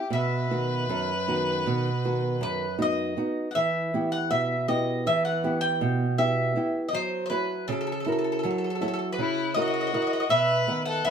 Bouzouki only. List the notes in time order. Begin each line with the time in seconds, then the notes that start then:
0.13 E5
2.43 B4
2.82 D#5
3.51 F#5
3.55 E5
4.12 F#5
4.31 E5
4.68 D#5
5.07 E5
5.25 F#5
5.61 G5
6.18 E5
6.89 D#5
6.95 C5
7.26 B4 C5
7.68 A4
7.72 A4
7.81 A4
7.87 A4
7.92 A4
8.00 A4
8.05 A4
8.12 A4
8.19 A4
8.24 A4
8.32 A4
8.39 A4
8.43 A4
8.51 A4
8.58 A4
8.64 A4
8.70 A4
8.75 A4
8.82 A4
8.88 A4
8.94 A4
8.99 A4
9.13 B4
9.54 D#5
9.62 D#5
9.68 D#5
9.74 D#5
9.81 D#5
9.87 D#5
9.94 D#5
10.02 D#5
10.07 D#5
10.13 D#5
10.20 D#5
10.30 E5
10.86 F#5
11.05 E5